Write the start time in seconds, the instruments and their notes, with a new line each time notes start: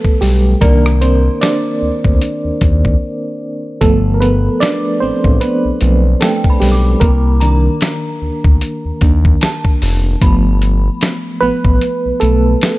Already playing: fm electric piano A3 B3 A4 B4
0.05 kick
0.21 analog synth bass B1, fm electric piano G3 G4, open hi-hat
0.61 analog synth bass C2, fm electric piano D#3 A#3 D4 A#4, synth bell D5, kick, closed hi-hat
0.86 cross-stick
1.01 fm electric piano C4 C5, closed hi-hat
1.41 fm electric piano D4 D5, snare, closed hi-hat
1.82 analog synth bass D2
2.04 analog synth bass D2, kick
2.22 closed hi-hat
2.45 analog synth bass D#2
2.61 analog synth bass D#2, kick, closed hi-hat
2.85 kick
3.81 analog synth bass G1, fm electric piano F3 A3 B3 A4, kick, closed hi-hat
4.14 fm electric piano A#4
4.20 fm electric piano B3 B4, closed hi-hat
4.60 fm electric piano D4 D5, snare, closed hi-hat
5.00 analog synth bass A1, fm electric piano C4 C5
5.24 analog synth bass A1, kick
5.41 fm electric piano B3 B4, closed hi-hat
5.65 analog synth bass B1
5.81 analog synth bass B1, fm electric piano F3 A3 B3, closed hi-hat
6.21 fm electric piano A3 A4, synth bell G5, snare, closed hi-hat
6.44 kick
6.50 synth bell B5
6.60 analog synth bass B1, fm electric piano G3 G4, open hi-hat
6.72 synth bell D6
7.00 analog synth bass C2, fm electric piano A#3 A#4, kick, closed hi-hat
7.40 fm electric piano D#3 A#3 D4, synth bell A#5, closed hi-hat
7.81 snare, closed hi-hat
8.22 analog synth bass D2
8.44 analog synth bass D2, kick
8.61 closed hi-hat
8.85 analog synth bass D#2
9.01 analog synth bass D#2, fm electric piano D#3 A#3 D4, kick, closed hi-hat
9.25 kick
9.41 synth bell A5, snare, closed hi-hat
9.65 kick
9.82 analog synth bass F1, open hi-hat
10.21 analog synth bass G1, fm electric piano F3 A3 B3, synth bell B5, kick, closed hi-hat
10.62 closed hi-hat
11.01 snare, closed hi-hat
11.41 analog synth bass A1, fm electric piano F3 A3 B3 B4
11.65 analog synth bass A1, kick
11.81 closed hi-hat
12.06 analog synth bass B1
12.20 analog synth bass B1, fm electric piano A3 A4, closed hi-hat
12.61 snare, closed hi-hat